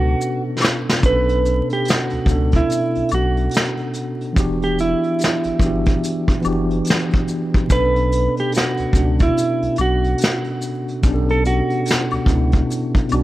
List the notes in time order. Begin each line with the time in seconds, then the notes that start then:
Already playing: C#2 B2 B3 C#4 D4 F#4 A4 B4
0.21 maracas
0.62 snare, high woodblock, maracas
0.89 snare
1.01 B1 B2 B3 C#4, kick, closed hi-hat, maracas
1.05 D4 A4 B4
1.29 closed hi-hat
1.45 closed hi-hat, maracas
1.70 G4, closed hi-hat
1.85 closed hi-hat, maracas
1.89 F#4, snare
2.10 C#2, closed hi-hat
2.25 C#2 B2 B3 C#4, kick, closed hi-hat, maracas
2.30 D4 A4
2.52 kick, closed hi-hat
2.56 E4
2.70 closed hi-hat, maracas
2.95 B1, closed hi-hat
3.09 B1, closed hi-hat, high woodblock, maracas
3.14 F#4
3.37 closed hi-hat
3.51 closed hi-hat, maracas
3.57 snare
3.77 closed hi-hat
3.93 closed hi-hat, maracas
4.21 closed hi-hat
4.33 E1 E3 B3 D4, kick, closed hi-hat
4.37 F#4 G4, maracas
4.62 G4, closed hi-hat
4.79 E4, closed hi-hat, maracas
5.03 closed hi-hat
5.19 closed hi-hat, maracas
5.24 snare
5.44 G1, closed hi-hat
5.59 G1 E3 B3 D4, kick, closed hi-hat, maracas
5.64 F#4 G4
5.86 kick, closed hi-hat
6.03 closed hi-hat, maracas
6.28 F#1, kick, closed hi-hat
6.41 E3 B3 D4, closed hi-hat, high woodblock, maracas
6.45 F#1 F#4 G4
6.70 closed hi-hat
6.85 closed hi-hat, maracas
6.90 snare
7.11 kick, closed hi-hat
7.27 closed hi-hat, maracas
7.54 kick, closed hi-hat
7.67 B1 B2 B3 C#4, kick, closed hi-hat, maracas
7.72 D4 A4 B4
7.96 closed hi-hat
8.12 closed hi-hat, maracas
8.37 G4, closed hi-hat
8.52 closed hi-hat, maracas
8.57 F#4, snare
8.77 C#2, closed hi-hat
8.92 C#2 B2 B3 C#4, kick, closed hi-hat, maracas
8.97 D4 F#4
9.19 E4, kick, closed hi-hat
9.37 closed hi-hat, maracas
9.62 B1, closed hi-hat
9.76 B1, closed hi-hat, high woodblock, maracas
9.81 F#4
10.04 closed hi-hat
10.18 closed hi-hat, maracas
10.24 snare
10.44 closed hi-hat
10.61 closed hi-hat, maracas
10.88 closed hi-hat
11.02 B1 B2 B3 C#4, kick, closed hi-hat, maracas
11.06 D4 G4
11.14 A4
11.29 A4, closed hi-hat
11.45 F#4, closed hi-hat, maracas
11.70 closed hi-hat
11.85 closed hi-hat, maracas
11.91 snare
12.10 C#2, closed hi-hat, high woodblock
12.25 C#2 B2 B3 C#4, kick, closed hi-hat, maracas
12.30 D4 E4
12.52 kick, closed hi-hat
12.70 closed hi-hat, maracas
12.95 B1, kick, closed hi-hat
13.09 B1 B2 B3 C#4, closed hi-hat, high woodblock, maracas
13.13 D4 F#4